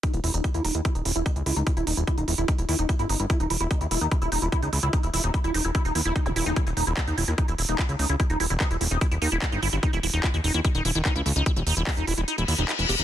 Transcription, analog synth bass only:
\new Staff \with { instrumentName = "Analog synth bass" } { \clef bass \time 4/4 \tempo 4 = 147 r16 ees,,16 ees,,16 ees,,16 r16 ees,16 ees,,16 ees,16 r16 ees,,16 ees,,16 ees,,16 r16 des,16 des,16 des,16 | r16 ees,,16 ees,,16 ees,,16 r16 ees,,16 ees,,16 ees,,16 r16 ees,,16 ees,16 ees,,16 r16 g,,16 g,,16 g,,16 | r16 ees,,16 ees,,16 ees,,16 r16 ees,16 ees,,16 ees,16 r16 ees,,16 ees,,16 ees,,16 r16 des,16 des,16 des,16 | r16 ees,,16 ees,,16 ees,,16 r16 ees,,16 ees,,16 ees,,16 r16 ees,,16 ees,16 ees,,16 r16 ees,,16 ees,,16 ees,,16 |
r16 ees,,16 ees,,16 ees,,16 r16 ees,16 ees,,16 ees,16 r16 ees,,16 ees,,16 ees,,16 r16 des,16 des,16 des,16 | r16 ees,,16 ees,,16 ees,,16 r16 ees,,16 ees,,16 ees,,16 r16 ees,,16 ees,16 ees,,16 r16 g,,16 g,,16 g,,16 | r16 ees,,16 ees,,16 ees,,16 r16 ees,16 ees,,16 ees,16 r16 ees,,16 ees,,16 ees,,16 r16 des,16 des,16 des,16 | r16 ees,,16 ees,,16 ees,,16 r16 ees,,16 ees,,16 ees,,16 r16 ees,,16 ees,16 ees,,16 r16 fes,,16 fes,,16 fes,,16 | }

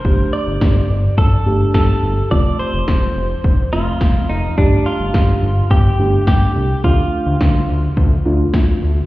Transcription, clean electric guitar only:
\new Staff \with { instrumentName = "Clean electric guitar" } { \time 4/4 \key f \mixolydian \tempo 4 = 106 c''8 d''4. a'4 a'4 | d''8 c''2 f'4 ees'8 | d'8 f'4. g'4 g'4 | f'2.~ f'8 r8 | }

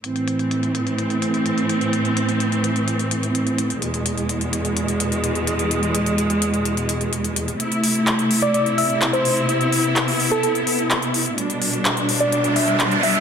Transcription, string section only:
\new Staff \with { instrumentName = "String section" } { \clef bass \time 4/4 \key a \minor \tempo 4 = 127 << { <a, c'>1~ | <a, c'>1 | <e, gis>1~ | <e, gis>1 |
<c e'>1~ | <c e'>1 | <b, d'>1 | } \\ { e1~ | e1 | b,1~ | b,1 |
a1 | b1 | g1 | } >> }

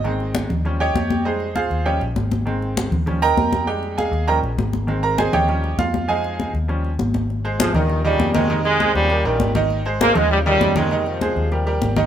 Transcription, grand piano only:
<<
  \new Staff \with { instrumentName = "Grand piano" } { \time 4/4 \key aes \major \tempo 4 = 199 ees''4 r4. <g' des'' ees'' g''>4. | <ees' aes' c'' ees''>4 <f' aes' c'' f''>4 <g' des'' ees'' g''>8 r4. | r2 r8 <bes' ees'' g'' bes''>4. | <g' g''>4 <aes' ees'' f'' aes''>4 <bes' ees'' g'' bes''>8 r4. |
r8 <bes' bes''>8 <aes' c'' ees'' aes''>8 <g' des'' ees'' g''>4. <f' f''>4 | <aes' ees'' f'' aes''>4. r2 r8 | r8 <aes aes' c''>8 <aes aes' c''>8 <ees ees' ees''>4 <ees ees' ees''>4 <ees ees' ees''>8 | <ees ees' ees''>4 <aes aes' c''>4 <g g' bes'>8 <g g' bes'>4 <ees ees' ees''>8~ |
<ees ees' ees''>8 <aes aes' c''>8 <aes aes' c''>8 <ees ees' ees''>4 <ees ees' ees''>4 <ees ees' ees''>8 | <ees ees' ees''>4 <aes aes' c''>4 <g g' bes'>8 <g g' bes'>4 <ees ees' ees''>8 | }
  \new Staff \with { instrumentName = "Grand piano" } { \clef bass \time 4/4 \key aes \major <ees aes c'>4. r8 <f g des'>8 r4. | <g aes>8 r4. <f g des'>8 r4. | <ees aes c'>4. r8 <f g des'>8 r4. | <g aes ees'>4. r8 <f g des'>8 r4. |
<ees aes c'>2 <f g des'>8 r4. | <f aes ees'>4. r8 <f g des'>8 r4. | r1 | r1 |
r1 | r1 | }
>>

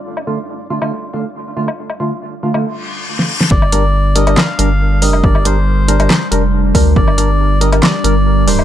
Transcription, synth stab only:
\new Staff \with { instrumentName = "Synth stab" } { \time 4/4 \key g \minor \tempo 4 = 139 r8 <d a f'>16 r8. <d a f'>16 <d a f'>16 r8 <d a f'>16 r8. <d a f'>16 r16 | r8 <d a f'>16 r8. <d a f'>16 <d a f'>16 r2 | r8 <g d' bes'>16 r8. <g d' bes'>16 <g d' bes'>16 r8 <g d' bes'>16 r8. <g d' bes'>8~ | <g d' bes'>8 <g d' bes'>16 r8. <g d' bes'>16 <g d' bes'>16 r8 <g d' bes'>16 r8. <g d' bes'>8~ |
<g d' bes'>8 <g d' bes'>16 r8. <g d' bes'>16 <g d' bes'>16 r8 <g d' bes'>16 r8. <g d' bes'>8 | }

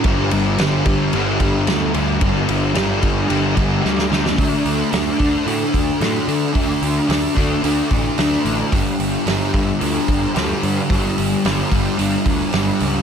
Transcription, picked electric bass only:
\new Staff \with { instrumentName = "Picked electric bass" } { \clef bass \time 4/4 \key g \major \tempo 4 = 110 g,,8 g,,8 g,,4 g,,8 g,,8 d,8 d,8 | g,,8 g,,8 g,,4 g,,8 g,,8 d,8 d,8 | d,8 d,8 d,8 d,8 a,8 d,8 a,8 d8 | d,8 d,8 d,8 d,8 d,8 a,,8 d,8 a,,8 |
g,,8 g,,8 g,,8 g,,8 d,8 g,,8 d,8 g,8 | g,,8 g,,8 g,,8 g,,8 g,,8 d,8 g,,8 cis,8 | }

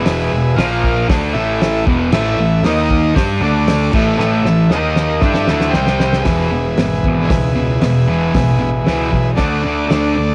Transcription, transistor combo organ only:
\new Staff \with { instrumentName = "Transistor combo organ" } { \time 4/4 \key a \lydian \tempo 4 = 116 <gis' b' e''>4 <eis' ais' eis''>4 r8 <e' a' e''>4 r8 | <e' a' e''>4 <dis' ais' dis''>4 r8 <d' a' d''>4 <e' a' e''>8~ | <e' a' e''>4 <dis' ais' dis''>4 <e' a' e''>4 <g' c'' g''>4 | <gis' b' e''>1~ |
<gis' b' e''>2 <d' a' d''>4 <d' a' d''>4 | }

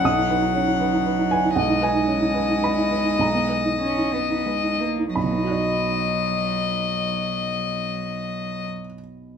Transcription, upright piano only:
\new Staff \with { instrumentName = "Upright piano" } { \time 3/4 \key b \major \tempo 4 = 94 << { dis'''2~ dis'''8 gis''8 | fis''8 gis''4. b''4 | ais''2~ ais''8 r8 | <b,, b, b dis' fis' dis'' b''>2.~ |
<b,, b, b dis' fis' dis'' b''>2. | } \\ { b,,16 dis'16 b'16 dis'16 cis'16 dis'16 b'16 dis'16 b'16 dis'16 b'16 dis'16 | b,,16 dis'16 b'16 dis'16 cis'16 dis'16 b'16 dis'16 b'16 dis'16 b'16 dis'16 | b,,16 b16 b'16 dis'16 cis'16 dis'16 b'16 dis'16 b'16 dis'16 b'16 dis'16 | r2. |
r2. | } >> }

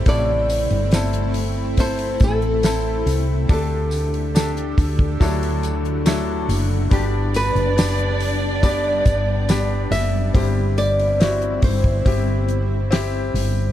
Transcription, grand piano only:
<<
  \new Staff \with { instrumentName = "Grand piano" } { \time 4/4 \key c \lydian \tempo 4 = 70 <c' e' a'>4 <c' e' a'>4 <c' e' a'>4 <c' e' a'>4 | <d' g' a'>4 <d' g' a'>4 <fis a d' e' a'>4 <fis a d' e' a'>4 | <b d' g'>4 <b d' g'>4 <b d' g'>4 <b d' g'>4 | <c' e' g'>4 <c' e' fis'>4 <c' e' g'>4 <c' e' g'>4 | }
  \new Staff \with { instrumentName = "Grand piano" } { \clef bass \time 4/4 \key c \lydian a,4. r2 r8 | d4. r8 d4. r8 | g4. r2 r8 | g,4. r2 r8 | }
>>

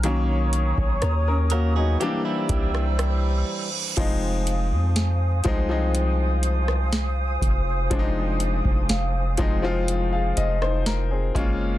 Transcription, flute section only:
\new Staff \with { instrumentName = "Flute section" } { \time 4/4 \key f \phrygian \tempo 4 = 61 << { <des'' ees'''>2 <c'' g'' e'''>2 | <c'' f'' ees'''>1~ | <c'' f'' ees'''>2.~ <c'' f'' ees'''>8 <des'' f'' f'''>8 | } \\ { <bes'' des'''>1 | aes''1~ | aes''2.~ aes''8 bes''8 | } >> }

